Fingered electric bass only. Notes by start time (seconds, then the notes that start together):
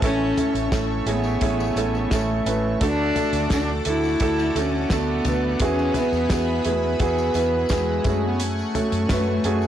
0.02 A1
0.55 A1
0.72 A1
1.06 A1
1.41 A1
1.76 A1
2.11 A1
2.46 A1
2.81 D2
3.33 D2
3.86 D2
4.20 D2
4.55 D2
4.90 D2
5.25 D2
5.60 E2
6.12 E2
6.30 E2
6.65 E2
7.00 E2
7.35 E2
7.70 E2
8.05 F#2
8.92 F#2
9.10 F#2
9.44 F#2